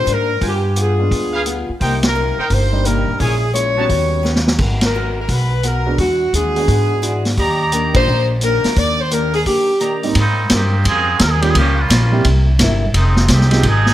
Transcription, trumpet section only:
0.41 F4 B4 G5 G#5
1.33 F4 G#4 B4 F5
1.80 D#4 A#4 C5 G5
2.39 D#4 A#4 C5 G5
3.20 E4 A#4 C#5 G#5
3.77 D#4 B4 C#5 A5
7.38 G4 D5 D#5 A#5
9.80 G4 D5 D#5 A#5

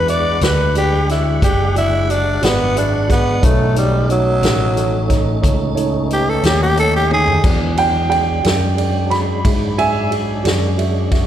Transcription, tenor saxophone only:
0.10 D5
0.44 B4
0.78 G4
1.11 E4
1.44 G4
1.78 E4
2.11 D4
2.44 B3
2.78 D4
3.12 B3
3.45 A3
3.78 G3
4.12 F#3
6.13 G4
6.30 A4
6.46 G4
6.63 G4
6.80 A4
6.97 G4
7.14 G#4

